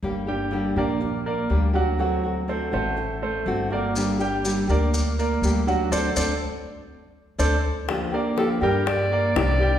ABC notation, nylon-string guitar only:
X:1
M:4/4
L:1/8
Q:1/4=122
K:Gm
V:1 name="Nylon-string guitar"
[D,G,B,DG] [B,DG] [D,G,B,DG] [B,DG] z2 [D,G,B,DG] [B,DG] | [D,A,C^F] [A,CF] [D,A,CF] [A,CF] z2 [D,A,CF] [A,CF] | [D,G,B,DG] [B,DG] [D,G,B,DG] [B,DG] z2 [D,G,B,DG] [B,DG] | [A,CD] [A,CD] z4 [A,CD] z |
[D,F,B,DG] [B,DG] [D,F,B,DG] [B,DG] z2 [D,F,B,DG] [B,DG] |]